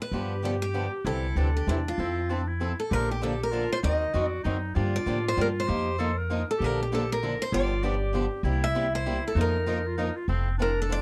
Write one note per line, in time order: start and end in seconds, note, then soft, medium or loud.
0.02 0.42 B4 medium
0.11 0.86 G2 medium
0.11 0.33 D3 medium
0.11 0.33 F3 medium
0.11 0.33 B3 medium
0.11 0.33 D4 medium
0.11 1.07 G4 medium
0.11 0.33 G4 medium
0.44 0.55 D3 medium
0.44 0.55 F3 medium
0.44 0.55 B3 medium
0.44 0.55 D4 medium
0.44 0.55 G4 medium
0.44 0.50 A4 medium
0.62 0.91 G4 medium
0.74 0.85 D3 medium
0.74 0.85 F3 medium
0.74 0.85 B3 medium
0.74 0.86 D4 medium
0.74 0.86 G4 medium
1.05 1.30 C2 medium
1.05 1.26 C3 medium
1.05 1.26 D3 medium
1.05 1.26 E3 medium
1.05 1.25 G3 medium
1.05 1.26 C4 medium
1.05 1.26 D4 medium
1.05 1.38 E4 medium
1.05 1.26 E4 medium
1.05 1.26 G4 medium
1.05 1.56 A4 medium
1.05 1.26 C5 medium
1.35 1.62 D2 medium
1.35 1.48 C3 medium
1.35 1.47 D3 medium
1.35 1.48 E3 medium
1.35 1.48 G3 medium
1.35 1.48 C4 medium
1.35 2.01 D4 medium
1.35 1.48 D4 medium
1.35 1.48 E4 loud
1.35 1.48 G4 medium
1.35 1.48 C5 medium
1.57 1.69 G4 medium
1.67 1.94 E2 medium
1.67 1.78 C3 medium
1.67 1.79 D3 medium
1.67 1.78 E3 medium
1.67 1.79 G3 medium
1.67 1.79 C4 medium
1.67 1.79 D4 medium
1.67 1.79 E4 medium
1.67 1.74 E4 medium
1.67 1.79 G4 medium
1.67 1.79 C5 medium
1.88 2.31 F4 medium
1.98 2.72 F2 medium
1.98 2.18 F3 medium
1.98 2.19 C4 medium
1.98 2.31 C4 medium
1.98 2.19 E4 medium
1.98 2.19 A4 medium
2.29 2.40 F3 medium
2.29 2.40 C4 medium
2.29 2.49 D4 medium
2.29 2.41 E4 medium
2.29 2.41 A4 medium
2.48 2.79 E4 medium
2.60 2.71 F3 medium
2.60 2.71 C4 medium
2.60 2.72 E4 medium
2.60 2.72 A4 medium
2.80 2.93 A4 medium
2.90 3.65 A#1 medium
2.90 3.11 D3 medium
2.90 3.11 F3 medium
2.90 3.11 A#3 medium
2.90 3.12 D4 medium
2.90 3.53 G4 medium
2.90 3.12 A4 medium
2.90 3.11 A#4 medium
3.11 3.23 G4 medium
3.22 3.33 D3 medium
3.22 3.33 F3 medium
3.22 3.33 A#3 medium
3.22 3.33 D4 medium
3.22 3.33 A4 medium
3.22 3.42 A4 medium
3.43 3.71 A#4 medium
3.51 3.63 D3 medium
3.51 3.63 F3 medium
3.51 3.64 A#3 medium
3.51 3.64 D4 medium
3.51 3.82 F4 medium
3.51 3.64 A4 medium
3.73 3.78 C5 loud
3.83 4.08 D#2 medium
3.83 4.03 D#3 medium
3.83 4.03 F#3 medium
3.83 4.03 C4 medium
3.83 4.16 D#4 medium
3.83 4.03 D#4 medium
3.83 4.03 A#4 medium
3.83 4.25 D#5 medium
4.14 4.41 F2 medium
4.14 4.25 D#3 medium
4.14 4.25 F#3 medium
4.14 4.25 C4 medium
4.14 4.25 D#4 medium
4.14 4.43 F#4 loud
4.14 4.25 A#4 medium
4.25 4.42 D5 medium
4.43 4.71 F#2 medium
4.43 4.56 D#3 medium
4.43 4.56 F#3 medium
4.43 4.56 C4 medium
4.43 4.76 D#4 medium
4.43 4.57 D#4 medium
4.43 4.57 A#4 medium
4.74 5.01 G2 medium
4.74 4.95 D3 medium
4.74 4.95 F3 medium
4.74 4.96 A#3 medium
4.74 4.96 D4 medium
4.74 5.69 F4 loud
4.74 4.96 G4 medium
4.96 5.24 D5 medium
5.06 5.33 A2 medium
5.06 5.17 D3 medium
5.06 5.18 F3 medium
5.06 5.18 A#3 medium
5.06 5.18 D4 medium
5.06 5.18 G4 medium
5.28 5.40 C5 medium
5.37 5.64 G2 medium
5.37 5.48 D3 medium
5.37 5.48 F3 medium
5.37 5.48 A#3 medium
5.37 5.48 D4 medium
5.37 5.49 G4 medium
5.41 5.46 A#4 medium
5.60 6.15 C5 medium
5.68 6.42 F2 medium
5.68 5.88 F3 medium
5.68 5.88 A#3 medium
5.68 5.88 D#4 medium
5.68 5.88 F4 medium
5.68 5.98 G4 loud
5.68 5.88 A#4 medium
5.98 6.10 F3 medium
5.98 6.10 A#3 medium
5.98 6.10 D#4 medium
5.98 6.10 F4 medium
5.98 6.19 A4 loud
5.98 6.10 A#4 medium
6.17 6.48 A#4 loud
6.30 6.41 F3 medium
6.30 6.41 A#3 medium
6.30 6.41 D#4 medium
6.30 6.41 F4 medium
6.30 6.41 A#4 medium
6.51 6.64 A4 medium
6.59 7.34 A#1 medium
6.59 6.81 D3 medium
6.59 6.81 F3 medium
6.59 6.81 A#3 medium
6.59 6.81 D4 medium
6.59 7.21 G4 loud
6.59 6.81 A4 medium
6.64 6.81 A#4 medium
6.83 6.87 G4 medium
6.92 7.02 D3 medium
6.92 7.03 F3 medium
6.92 7.02 A#3 medium
6.92 7.03 D4 medium
6.92 7.03 A4 medium
6.92 7.12 A4 medium
7.12 7.42 A#4 medium
7.23 7.33 D3 medium
7.23 7.33 F3 medium
7.23 7.33 A#3 medium
7.23 7.33 D4 medium
7.23 7.34 A4 medium
7.42 7.54 C5 loud
7.52 8.26 G1 medium
7.52 7.72 D3 medium
7.52 7.73 F3 medium
7.52 7.73 B3 medium
7.52 7.73 D4 medium
7.52 7.85 F4 loud
7.52 7.73 G4 medium
7.52 8.11 D5 loud
7.83 7.94 D3 medium
7.83 7.94 F3 medium
7.83 7.94 B3 medium
7.83 7.94 D4 medium
7.83 8.44 G4 loud
7.83 7.95 G4 loud
8.14 8.25 D3 medium
8.14 8.25 F3 medium
8.14 8.25 B3 medium
8.14 8.25 D4 medium
8.14 8.25 G4 medium
8.43 9.17 C2 medium
8.43 8.64 C3 medium
8.43 8.64 G3 medium
8.43 8.64 A#3 medium
8.43 9.32 E4 medium
8.43 8.64 E4 medium
8.43 8.64 G4 medium
8.64 8.95 E5 loud
8.75 8.86 C3 medium
8.75 8.86 G3 medium
8.75 8.86 A#3 medium
8.75 8.86 E4 medium
8.75 8.86 G4 medium
8.95 9.23 C5 loud
9.06 9.16 C3 medium
9.06 9.17 G3 medium
9.06 9.17 A#3 medium
9.06 9.17 E4 medium
9.06 9.17 G4 medium
9.28 9.38 A4 medium
9.35 10.09 F2 medium
9.35 9.56 F3 medium
9.35 9.56 A#3 medium
9.35 9.64 D#4 medium
9.35 9.56 D#4 medium
9.35 9.56 F4 medium
9.35 9.56 A#4 medium
9.41 10.14 A#4 medium
9.66 9.77 F3 medium
9.66 9.77 A#3 medium
9.66 9.78 D#4 medium
9.66 9.88 D#4 medium
9.66 9.78 F4 medium
9.66 9.78 A#4 medium
9.86 9.97 F4 medium
9.98 10.08 F3 medium
9.98 10.08 A#3 medium
9.98 10.17 D#4 medium
9.98 10.09 D#4 medium
9.98 10.09 F4 medium
9.98 10.09 A#4 medium
10.16 10.28 F4 medium
10.28 11.01 F1 medium
10.28 10.48 F3 medium
10.28 10.48 C4 medium
10.28 10.57 C4 medium
10.28 10.48 E4 medium
10.28 10.48 A4 medium
10.58 10.70 F3 medium
10.58 10.70 C4 medium
10.58 11.02 D4 medium
10.58 10.70 E4 medium
10.58 10.70 A4 medium
10.62 10.79 A#4 medium
10.82 10.92 A4 medium
10.89 11.00 F3 medium
10.89 11.00 C4 medium
10.89 11.00 E4 medium
10.89 11.01 A4 medium
10.89 11.02 D5 loud